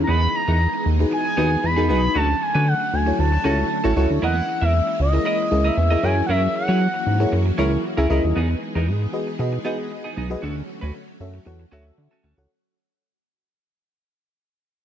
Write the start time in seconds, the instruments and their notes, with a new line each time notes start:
Already playing: string machine E3
0.03 analog synth lead A#5
0.08 analog synth bass E2, string machine G#3 B3 D#4 G#4, clean electric guitar B3 D#4 G#4, analog synth lead B5
0.22 muted clean electric guitar stroke
0.34 analog synth lead A#5, muted clean electric guitar stroke
0.48 analog synth bass E2, clean electric guitar B3 D#4 A#4
0.60 muted clean electric guitar stroke
0.74 muted clean electric guitar stroke
0.86 analog synth bass D#2
0.99 fm electric piano D#4 F#4 G#4 B4, muted clean electric guitar stroke
1.11 analog synth lead G#5, muted clean electric guitar stroke
1.25 muted clean electric guitar stroke
1.37 analog synth bass D#2, clean electric guitar B3 D#4 G#4, fm electric piano D#4 F#4 G#4 B4
1.51 muted clean electric guitar stroke
1.63 analog synth bass E2, analog synth lead B5, muted clean electric guitar stroke
1.76 clean electric guitar B3 D#4 G#4, fm electric piano D#4 F#4 G#4 A#4
1.89 analog synth bass B1, clean electric guitar B3 D#4 G#4, fm electric piano D#4 F#4 G#4 B4, analog synth lead B5
2.02 muted clean electric guitar stroke
2.14 analog synth bass D2, string machine D3 F#3 A3 C#4 F#4, clean electric guitar C#4 F#4 A4, analog synth lead A5
2.29 muted clean electric guitar stroke
2.41 analog synth lead G#5, muted clean electric guitar stroke
2.55 analog synth bass D3, clean electric guitar C#4 F#4 B4
2.67 analog synth lead F#5, muted clean electric guitar stroke
2.80 muted clean electric guitar stroke
2.93 analog synth bass D2, analog synth lead G#5
3.06 fm electric piano E4 F#4 A4 C#5, muted clean electric guitar stroke
3.19 analog synth bass D2, analog synth lead A5
3.32 muted clean electric guitar stroke
3.44 analog synth bass C#2, clean electric guitar C#4 F#4 A4, fm electric piano E4 F#4 A4 C#5
3.58 muted clean electric guitar stroke
3.70 muted clean electric guitar stroke
3.84 analog synth bass A1, clean electric guitar C#4 F#4 A4, fm electric piano E4 F#4 A4 C#5
3.96 analog synth bass C#2, clean electric guitar C#4 F#4 A4, fm electric piano E4 F#4 A4 C#5
4.10 analog synth bass D2, muted clean electric guitar stroke
4.22 analog synth bass E2, string machine E3 G#3 A#3 E4, clean electric guitar E4 A#4 D#5, analog synth lead F#5
4.36 muted clean electric guitar stroke
4.48 muted clean electric guitar stroke
4.61 analog synth bass E2, clean electric guitar E4 A#4 E5, analog synth lead E5
4.74 muted clean electric guitar stroke
4.87 muted clean electric guitar stroke
5.00 analog synth bass C#2, analog synth lead D#5
5.13 fm electric piano E4 G#4 A#4 D#5, muted clean electric guitar stroke
5.25 clean electric guitar E4 A#4 D#5
5.39 muted clean electric guitar stroke
5.51 analog synth bass C#2, fm electric piano E4 G#4 A#4 D#5, muted clean electric guitar stroke
5.64 clean electric guitar E4 A#4 D#5, analog synth lead E5
5.77 analog synth bass E2, muted clean electric guitar stroke
5.90 fm electric piano E4 G#4 A#4 D#5, clean electric guitar E4 A#4 D#5
6.03 analog synth bass F#2, string machine E3 F#3 A#3 F#4, clean electric guitar C#4 E4 A#4, fm electric piano E4 G#4 A#4 C#5, analog synth lead G#5
6.16 muted clean electric guitar stroke
6.27 analog synth bass F#2, clean electric guitar C#4 E4 A#4, analog synth lead E5 F#5
6.43 analog synth lead E5, muted clean electric guitar stroke
6.55 analog synth lead F#5, muted clean electric guitar stroke
6.68 analog synth bass F#3, clean electric guitar C#4 E4 C#5
6.81 muted clean electric guitar stroke
6.94 muted clean electric guitar stroke
7.07 analog synth bass G#2
7.20 fm electric piano E4 G#4 A#4 C#5, muted clean electric guitar stroke
7.32 analog synth bass F#2, muted clean electric guitar stroke
7.46 muted clean electric guitar stroke
7.58 analog synth bass C#2, clean electric guitar C#4 E4 A#4, fm electric piano E4 G#4 A#4 C#5
7.72 muted clean electric guitar stroke
7.84 muted clean electric guitar stroke
7.97 analog synth bass C#2, clean electric guitar C#4 E4 A#4, fm electric piano E4 G#4 A#4 E5
8.10 analog synth bass C#2, clean electric guitar C#4 E4 A#4, fm electric piano E4 G#4 A#4 D#5
8.23 analog synth bass D#2, muted clean electric guitar stroke
8.36 analog synth bass E2, string machine E3 G#3 B3 D#4 G#4, clean electric guitar B3 D#4 G#4
8.50 muted clean electric guitar stroke
8.62 muted clean electric guitar stroke
8.75 analog synth bass E2, clean electric guitar B3 D#4 A#4
8.87 analog synth bass G#2, muted clean electric guitar stroke
9.01 muted clean electric guitar stroke
9.13 fm electric piano F#4 G#4 B4 D#5
9.27 muted clean electric guitar stroke
9.39 analog synth bass B2, fm electric piano F#4 G#4 B4 D#5, muted clean electric guitar stroke
9.53 muted clean electric guitar stroke
9.65 clean electric guitar B3 D#4 G#4, fm electric piano F#4 G#4 B4 D#5
9.79 muted clean electric guitar stroke
9.91 muted clean electric guitar stroke
10.04 clean electric guitar B3 D#4 G#4
10.16 analog synth bass B1, clean electric guitar B3 D#4 G#4
10.30 fm electric piano F#4 G#4 B4 D#5, muted clean electric guitar stroke
10.42 analog synth bass D2, string machine D3 F#3 A3 C#4 F#4, clean electric guitar C#4 F#4 A4
10.56 muted clean electric guitar stroke
10.68 muted clean electric guitar stroke
10.81 analog synth bass D2, clean electric guitar C#4 F#4 B4
10.94 muted clean electric guitar stroke
11.08 muted clean electric guitar stroke
11.20 analog synth bass F#2, fm electric piano F#4 A4 C#5 E5
11.34 muted clean electric guitar stroke
11.46 analog synth bass E2, fm electric piano F#4 A4 C#5 F#5, muted clean electric guitar stroke
11.60 muted clean electric guitar stroke
11.71 analog synth bass D2, clean electric guitar C#4 F#4 A4, fm electric piano F#4 A4 C#5 E5
11.85 muted clean electric guitar stroke
11.97 analog synth bass D3, muted clean electric guitar stroke
12.11 clean electric guitar C#4 F#4 A4
12.23 analog synth bass D2, clean electric guitar C#4 F#4 A4
12.37 analog synth bass C#2, fm electric piano F#4 A4 C#5 F#5, muted clean electric guitar stroke